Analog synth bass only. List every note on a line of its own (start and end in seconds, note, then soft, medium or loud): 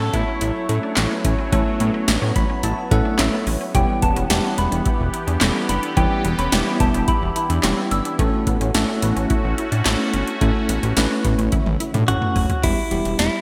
0.14 0.24 A1 loud
0.41 0.51 A1 loud
0.69 0.79 A2 loud
0.97 1.07 A1 loud
1.25 1.35 A1 medium
1.53 1.63 A1 loud
1.80 1.90 A2 loud
2.08 2.18 A1 loud
2.22 2.32 A2 loud
2.36 2.46 A1 loud
2.63 2.74 A1 loud
2.91 3.01 A2 loud
3.19 3.29 A1 loud
3.47 3.57 A1 medium
3.75 3.85 E1 loud
4.02 4.12 E1 loud
4.16 4.26 E1 loud
4.30 4.40 E1 loud
4.58 4.68 E1 loud
4.72 4.82 E1 loud
5.00 5.10 E1 loud
5.27 5.37 E2 loud
5.41 5.51 E1 loud
5.69 5.79 F#1 medium
5.97 6.07 E1 loud
6.25 6.35 E1 loud
6.39 6.49 E1 medium
6.53 6.63 E1 loud
6.80 6.90 E1 loud
6.94 7.04 E1 loud
7.22 7.32 E1 loud
7.50 7.60 E2 loud
7.64 7.74 E1 loud
7.91 8.01 G1 medium
8.19 8.29 A1 loud
8.47 8.57 A1 medium
8.61 8.71 A1 loud
8.75 8.85 A1 loud
9.03 9.13 A1 loud
9.16 9.26 A1 medium
9.44 9.54 A1 loud
9.72 9.82 A2 loud
9.86 9.96 A1 loud
10.14 10.24 G1 medium
10.41 10.51 A1 loud
10.69 10.79 A1 loud
10.83 10.93 A1 loud
10.97 11.07 A1 loud
11.25 11.35 A1 medium
11.39 11.49 A1 loud
11.66 11.76 A1 loud
11.94 12.04 A2 loud
12.08 12.18 A1 loud
12.36 12.46 F#1 medium
12.64 12.74 E1 loud
12.91 13.01 E1 medium
13.05 13.15 E1 medium
13.19 13.29 E1 loud